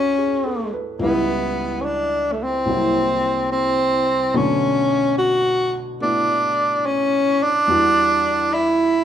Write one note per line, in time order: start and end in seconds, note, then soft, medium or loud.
0.00 1.00 D2 soft
0.00 1.01 D3 soft
0.00 1.01 F#3 soft
0.00 1.01 A3 soft
0.00 0.72 C#4 medium
0.00 1.01 C#4 soft
0.00 1.01 E4 medium
0.00 0.33 F#4 soft
0.18 0.71 G#4 soft
0.46 0.89 A4 soft
0.74 1.01 B4 soft
0.99 2.66 C#2 medium
0.99 2.67 E3 medium
0.99 2.68 G3 soft
0.99 1.83 B3 medium
0.99 2.68 B4 soft
1.04 2.69 E4 medium
1.81 1.87 C#4 medium
1.81 2.34 D4 medium
2.32 2.45 A3 medium
2.43 3.51 C4 medium
2.65 4.34 C2 soft
2.65 4.34 C3 soft
2.65 4.33 F#3 soft
2.65 4.36 A#3 soft
2.70 4.36 E4 medium
3.52 4.38 C4 medium
4.34 7.68 B2 medium
4.34 7.69 D3 medium
4.34 7.68 F#3 soft
4.34 5.99 A3 soft
4.34 5.18 C#4 medium
4.34 7.69 C#5 soft
5.18 5.80 F#4 medium
6.00 7.68 A3 soft
6.00 7.68 B3 soft
6.00 6.88 D4 medium
6.00 7.69 E4 soft
6.00 7.68 F#4 soft
6.86 7.45 C#4 medium
7.43 8.55 D4 loud
7.68 9.04 E2 medium
7.68 9.04 E3 soft
7.68 9.04 G3 soft
7.68 9.04 D4 soft
7.68 9.04 F#4 medium
8.54 9.04 E4 medium